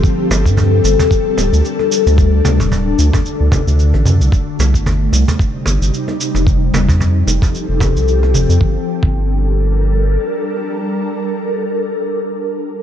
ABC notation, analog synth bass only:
X:1
M:4/4
L:1/16
Q:"Swing 16ths" 1/4=112
K:Gm
V:1 name="Analog synth bass" clef=bass
z2 G,,, G,,3 G,,, z3 D,,, D,, z3 D,,- | D,,2 D,, D,,,3 D,, z2 D,, z D,,2 A,,, ^F,, C,, | z2 C,, G,,,3 C,, z3 G,,, G,,, z3 F,,,- | F,,,2 F,,, F,,3 F,,, z2 F,,,2 C,,3 F,,, F,, |
G,,, z2 G,,,8- G,,, z4 | z16 |]